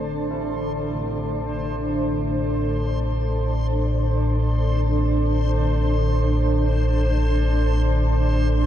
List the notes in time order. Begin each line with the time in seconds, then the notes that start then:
Already playing: A1 A2 D4 A4 C5
0.31 E4
0.92 A2